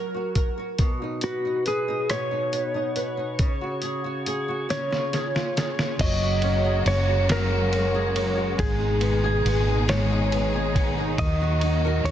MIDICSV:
0, 0, Header, 1, 6, 480
1, 0, Start_track
1, 0, Key_signature, 6, "major"
1, 0, Tempo, 865801
1, 438, Time_signature, 6, 3, 24, 8
1, 6715, End_track
2, 0, Start_track
2, 0, Title_t, "Electric slide guitar"
2, 0, Program_c, 0, 29
2, 686, Note_on_c, 0, 66, 68
2, 906, Note_off_c, 0, 66, 0
2, 929, Note_on_c, 0, 68, 73
2, 1168, Note_on_c, 0, 73, 73
2, 1172, Note_off_c, 0, 68, 0
2, 2601, Note_off_c, 0, 73, 0
2, 2608, Note_on_c, 0, 73, 68
2, 3303, Note_off_c, 0, 73, 0
2, 3330, Note_on_c, 0, 75, 94
2, 3784, Note_off_c, 0, 75, 0
2, 3812, Note_on_c, 0, 73, 87
2, 4030, Note_off_c, 0, 73, 0
2, 4057, Note_on_c, 0, 70, 92
2, 4747, Note_off_c, 0, 70, 0
2, 4766, Note_on_c, 0, 68, 75
2, 5486, Note_on_c, 0, 73, 93
2, 5505, Note_off_c, 0, 68, 0
2, 6204, Note_on_c, 0, 75, 89
2, 6224, Note_off_c, 0, 73, 0
2, 6682, Note_on_c, 0, 73, 86
2, 6695, Note_off_c, 0, 75, 0
2, 6715, Note_off_c, 0, 73, 0
2, 6715, End_track
3, 0, Start_track
3, 0, Title_t, "Nylon-string guitar"
3, 0, Program_c, 1, 24
3, 0, Note_on_c, 1, 54, 56
3, 0, Note_on_c, 1, 66, 47
3, 0, Note_on_c, 1, 70, 55
3, 78, Note_off_c, 1, 66, 0
3, 80, Note_on_c, 1, 66, 45
3, 189, Note_off_c, 1, 70, 0
3, 196, Note_on_c, 1, 70, 53
3, 317, Note_off_c, 1, 66, 0
3, 319, Note_on_c, 1, 66, 47
3, 438, Note_on_c, 1, 47, 64
3, 485, Note_off_c, 1, 70, 0
3, 562, Note_off_c, 1, 66, 0
3, 565, Note_on_c, 1, 63, 50
3, 683, Note_on_c, 1, 71, 61
3, 797, Note_off_c, 1, 63, 0
3, 804, Note_on_c, 1, 63, 51
3, 915, Note_off_c, 1, 71, 0
3, 922, Note_on_c, 1, 71, 56
3, 1036, Note_off_c, 1, 63, 0
3, 1043, Note_on_c, 1, 63, 50
3, 1160, Note_off_c, 1, 47, 0
3, 1168, Note_on_c, 1, 47, 66
3, 1275, Note_off_c, 1, 63, 0
3, 1281, Note_on_c, 1, 63, 50
3, 1391, Note_off_c, 1, 71, 0
3, 1398, Note_on_c, 1, 71, 49
3, 1514, Note_off_c, 1, 63, 0
3, 1521, Note_on_c, 1, 63, 46
3, 1636, Note_off_c, 1, 71, 0
3, 1643, Note_on_c, 1, 71, 53
3, 1649, Note_off_c, 1, 54, 0
3, 1752, Note_off_c, 1, 63, 0
3, 1759, Note_on_c, 1, 63, 45
3, 1879, Note_on_c, 1, 49, 66
3, 1928, Note_off_c, 1, 63, 0
3, 1930, Note_off_c, 1, 71, 0
3, 1933, Note_off_c, 1, 47, 0
3, 2003, Note_on_c, 1, 66, 43
3, 2119, Note_on_c, 1, 68, 51
3, 2234, Note_off_c, 1, 66, 0
3, 2241, Note_on_c, 1, 66, 49
3, 2361, Note_off_c, 1, 68, 0
3, 2364, Note_on_c, 1, 68, 49
3, 2479, Note_off_c, 1, 66, 0
3, 2485, Note_on_c, 1, 66, 47
3, 2593, Note_off_c, 1, 49, 0
3, 2600, Note_on_c, 1, 49, 61
3, 2652, Note_off_c, 1, 66, 0
3, 2720, Note_on_c, 1, 65, 46
3, 2841, Note_off_c, 1, 68, 0
3, 2844, Note_on_c, 1, 68, 52
3, 2958, Note_off_c, 1, 65, 0
3, 2965, Note_on_c, 1, 65, 42
3, 3083, Note_off_c, 1, 68, 0
3, 3086, Note_on_c, 1, 68, 54
3, 3204, Note_off_c, 1, 65, 0
3, 3212, Note_on_c, 1, 65, 47
3, 3336, Note_off_c, 1, 49, 0
3, 3338, Note_on_c, 1, 54, 76
3, 3375, Note_off_c, 1, 65, 0
3, 3451, Note_on_c, 1, 66, 57
3, 3468, Note_off_c, 1, 68, 0
3, 3565, Note_on_c, 1, 61, 63
3, 3684, Note_on_c, 1, 68, 56
3, 3804, Note_off_c, 1, 61, 0
3, 3811, Note_on_c, 1, 61, 58
3, 3918, Note_off_c, 1, 66, 0
3, 3925, Note_on_c, 1, 66, 48
3, 4037, Note_off_c, 1, 54, 0
3, 4044, Note_on_c, 1, 54, 73
3, 4154, Note_off_c, 1, 66, 0
3, 4160, Note_on_c, 1, 66, 57
3, 4275, Note_off_c, 1, 61, 0
3, 4282, Note_on_c, 1, 61, 64
3, 4403, Note_off_c, 1, 68, 0
3, 4405, Note_on_c, 1, 68, 63
3, 4514, Note_off_c, 1, 61, 0
3, 4520, Note_on_c, 1, 61, 61
3, 4628, Note_off_c, 1, 66, 0
3, 4635, Note_on_c, 1, 66, 59
3, 4759, Note_on_c, 1, 44, 74
3, 4806, Note_off_c, 1, 66, 0
3, 4809, Note_off_c, 1, 61, 0
3, 4811, Note_off_c, 1, 54, 0
3, 4880, Note_on_c, 1, 63, 56
3, 4992, Note_on_c, 1, 59, 61
3, 5120, Note_off_c, 1, 68, 0
3, 5122, Note_on_c, 1, 68, 67
3, 5236, Note_off_c, 1, 59, 0
3, 5247, Note_on_c, 1, 59, 55
3, 5362, Note_off_c, 1, 63, 0
3, 5364, Note_on_c, 1, 63, 60
3, 5469, Note_off_c, 1, 44, 0
3, 5476, Note_on_c, 1, 44, 75
3, 5600, Note_off_c, 1, 63, 0
3, 5602, Note_on_c, 1, 63, 65
3, 5713, Note_off_c, 1, 59, 0
3, 5720, Note_on_c, 1, 59, 60
3, 5836, Note_off_c, 1, 68, 0
3, 5843, Note_on_c, 1, 68, 62
3, 5958, Note_off_c, 1, 59, 0
3, 5964, Note_on_c, 1, 59, 67
3, 6087, Note_off_c, 1, 63, 0
3, 6089, Note_on_c, 1, 63, 60
3, 6206, Note_on_c, 1, 51, 72
3, 6245, Note_off_c, 1, 44, 0
3, 6249, Note_off_c, 1, 68, 0
3, 6250, Note_off_c, 1, 59, 0
3, 6325, Note_off_c, 1, 63, 0
3, 6328, Note_on_c, 1, 66, 66
3, 6444, Note_on_c, 1, 63, 63
3, 6569, Note_on_c, 1, 70, 65
3, 6681, Note_off_c, 1, 63, 0
3, 6692, Note_on_c, 1, 63, 57
3, 6715, Note_off_c, 1, 51, 0
3, 6715, Note_off_c, 1, 63, 0
3, 6715, Note_off_c, 1, 66, 0
3, 6715, Note_off_c, 1, 70, 0
3, 6715, End_track
4, 0, Start_track
4, 0, Title_t, "String section"
4, 0, Program_c, 2, 48
4, 3319, Note_on_c, 2, 49, 69
4, 3320, Note_on_c, 2, 66, 78
4, 3323, Note_on_c, 2, 54, 61
4, 3324, Note_on_c, 2, 56, 63
4, 3324, Note_on_c, 2, 58, 58
4, 4746, Note_off_c, 2, 49, 0
4, 4746, Note_off_c, 2, 66, 0
4, 4747, Note_off_c, 2, 54, 0
4, 4748, Note_off_c, 2, 58, 0
4, 4762, Note_on_c, 2, 51, 59
4, 4763, Note_on_c, 2, 63, 63
4, 4764, Note_on_c, 2, 47, 68
4, 4764, Note_on_c, 2, 68, 70
4, 6179, Note_off_c, 2, 56, 0
4, 6186, Note_off_c, 2, 47, 0
4, 6186, Note_off_c, 2, 68, 0
4, 6198, Note_on_c, 2, 46, 71
4, 6198, Note_on_c, 2, 66, 79
4, 6199, Note_on_c, 2, 54, 71
4, 6715, Note_off_c, 2, 46, 0
4, 6715, Note_off_c, 2, 51, 0
4, 6715, Note_off_c, 2, 54, 0
4, 6715, Note_off_c, 2, 63, 0
4, 6715, Note_off_c, 2, 66, 0
4, 6715, End_track
5, 0, Start_track
5, 0, Title_t, "Fingered electric bass"
5, 0, Program_c, 3, 33
5, 3323, Note_on_c, 3, 30, 93
5, 3780, Note_off_c, 3, 30, 0
5, 3801, Note_on_c, 3, 30, 85
5, 4739, Note_off_c, 3, 30, 0
5, 4763, Note_on_c, 3, 32, 103
5, 5219, Note_off_c, 3, 32, 0
5, 5238, Note_on_c, 3, 32, 85
5, 6176, Note_off_c, 3, 32, 0
5, 6199, Note_on_c, 3, 39, 94
5, 6656, Note_off_c, 3, 39, 0
5, 6675, Note_on_c, 3, 39, 100
5, 6715, Note_off_c, 3, 39, 0
5, 6715, End_track
6, 0, Start_track
6, 0, Title_t, "Drums"
6, 196, Note_on_c, 9, 42, 51
6, 197, Note_on_c, 9, 36, 67
6, 252, Note_off_c, 9, 36, 0
6, 252, Note_off_c, 9, 42, 0
6, 435, Note_on_c, 9, 42, 63
6, 437, Note_on_c, 9, 36, 97
6, 491, Note_off_c, 9, 42, 0
6, 493, Note_off_c, 9, 36, 0
6, 673, Note_on_c, 9, 42, 46
6, 728, Note_off_c, 9, 42, 0
6, 919, Note_on_c, 9, 42, 59
6, 974, Note_off_c, 9, 42, 0
6, 1162, Note_on_c, 9, 42, 67
6, 1163, Note_on_c, 9, 37, 88
6, 1217, Note_off_c, 9, 42, 0
6, 1219, Note_off_c, 9, 37, 0
6, 1402, Note_on_c, 9, 42, 45
6, 1458, Note_off_c, 9, 42, 0
6, 1640, Note_on_c, 9, 42, 52
6, 1696, Note_off_c, 9, 42, 0
6, 1879, Note_on_c, 9, 42, 63
6, 1881, Note_on_c, 9, 36, 104
6, 1934, Note_off_c, 9, 42, 0
6, 1936, Note_off_c, 9, 36, 0
6, 2116, Note_on_c, 9, 42, 46
6, 2171, Note_off_c, 9, 42, 0
6, 2364, Note_on_c, 9, 42, 60
6, 2420, Note_off_c, 9, 42, 0
6, 2608, Note_on_c, 9, 42, 70
6, 2610, Note_on_c, 9, 38, 45
6, 2663, Note_off_c, 9, 42, 0
6, 2665, Note_off_c, 9, 38, 0
6, 2731, Note_on_c, 9, 38, 41
6, 2786, Note_off_c, 9, 38, 0
6, 2845, Note_on_c, 9, 42, 44
6, 2849, Note_on_c, 9, 38, 50
6, 2901, Note_off_c, 9, 42, 0
6, 2905, Note_off_c, 9, 38, 0
6, 2971, Note_on_c, 9, 38, 55
6, 3027, Note_off_c, 9, 38, 0
6, 3089, Note_on_c, 9, 42, 57
6, 3092, Note_on_c, 9, 38, 66
6, 3145, Note_off_c, 9, 42, 0
6, 3147, Note_off_c, 9, 38, 0
6, 3210, Note_on_c, 9, 38, 67
6, 3265, Note_off_c, 9, 38, 0
6, 3323, Note_on_c, 9, 36, 122
6, 3323, Note_on_c, 9, 51, 69
6, 3324, Note_on_c, 9, 49, 99
6, 3378, Note_off_c, 9, 36, 0
6, 3378, Note_off_c, 9, 51, 0
6, 3379, Note_off_c, 9, 49, 0
6, 3559, Note_on_c, 9, 51, 45
6, 3614, Note_off_c, 9, 51, 0
6, 3803, Note_on_c, 9, 51, 64
6, 3859, Note_off_c, 9, 51, 0
6, 4043, Note_on_c, 9, 51, 70
6, 4045, Note_on_c, 9, 38, 104
6, 4099, Note_off_c, 9, 51, 0
6, 4100, Note_off_c, 9, 38, 0
6, 4284, Note_on_c, 9, 51, 44
6, 4339, Note_off_c, 9, 51, 0
6, 4523, Note_on_c, 9, 51, 54
6, 4579, Note_off_c, 9, 51, 0
6, 4761, Note_on_c, 9, 36, 126
6, 4762, Note_on_c, 9, 51, 68
6, 4817, Note_off_c, 9, 36, 0
6, 4817, Note_off_c, 9, 51, 0
6, 4996, Note_on_c, 9, 51, 45
6, 5051, Note_off_c, 9, 51, 0
6, 5244, Note_on_c, 9, 51, 64
6, 5300, Note_off_c, 9, 51, 0
6, 5482, Note_on_c, 9, 51, 62
6, 5484, Note_on_c, 9, 38, 110
6, 5538, Note_off_c, 9, 51, 0
6, 5539, Note_off_c, 9, 38, 0
6, 5723, Note_on_c, 9, 51, 41
6, 5778, Note_off_c, 9, 51, 0
6, 5962, Note_on_c, 9, 36, 81
6, 5964, Note_on_c, 9, 51, 54
6, 6017, Note_off_c, 9, 36, 0
6, 6020, Note_off_c, 9, 51, 0
6, 6200, Note_on_c, 9, 36, 118
6, 6200, Note_on_c, 9, 51, 65
6, 6255, Note_off_c, 9, 36, 0
6, 6256, Note_off_c, 9, 51, 0
6, 6439, Note_on_c, 9, 51, 47
6, 6494, Note_off_c, 9, 51, 0
6, 6684, Note_on_c, 9, 51, 57
6, 6715, Note_off_c, 9, 51, 0
6, 6715, End_track
0, 0, End_of_file